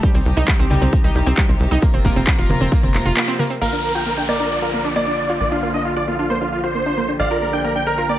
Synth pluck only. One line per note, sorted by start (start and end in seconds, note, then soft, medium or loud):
0.03 0.08 G3 loud
0.15 0.17 C4 medium
0.37 0.44 D#4 loud
0.48 0.51 G3 medium
0.59 0.64 C4 loud
0.70 0.75 G3 loud
0.82 0.84 C4 medium
1.04 1.11 D#4 loud
1.15 1.18 G3 medium
1.26 1.31 C4 loud
1.38 1.42 G3 loud
1.49 1.52 C4 medium
1.71 1.78 D#4 loud
1.82 1.85 A#3 medium
1.94 1.98 C4 loud
2.05 2.09 A#3 loud
2.16 2.19 C4 medium
2.38 2.45 F4 loud
2.50 2.52 A#3 medium
2.61 2.65 C4 loud
2.72 2.76 A#3 loud
2.83 2.86 C4 medium
3.05 3.12 F4 loud
3.17 3.19 A#3 medium
3.28 3.32 C4 loud
3.39 3.44 A#3 loud
3.50 3.53 C4 medium
3.62 3.66 A#3 loud
3.73 3.75 D4 medium
3.95 4.02 F4 loud
4.06 4.09 A#3 medium
4.18 4.22 D4 medium
4.29 4.33 A#3 loud
4.40 4.43 D4 medium
4.62 4.69 F4 loud
4.74 4.76 A#3 medium
4.85 4.89 D4 loud
4.96 5.00 A#3 loud
5.07 5.10 D4 medium
5.29 5.36 F4 loud
5.41 5.43 A#3 medium
5.52 5.56 D4 loud
5.63 5.67 A#3 medium
5.74 5.77 D4 medium
5.97 6.03 F4 loud
6.08 6.10 A#3 medium
6.19 6.23 D4 loud
6.30 6.35 A#3 loud
6.41 6.44 D4 medium
6.64 6.70 F4 loud
6.75 6.78 A#3 medium
6.86 6.91 D4 loud
6.97 7.02 A#3 loud
7.08 7.11 D4 medium
7.31 7.38 F4 loud
7.42 7.45 A#3 medium
7.53 7.58 D4 loud
7.64 7.69 A#3 medium
7.76 7.78 D4 medium
7.98 8.05 F4 loud
8.09 8.12 A#3 medium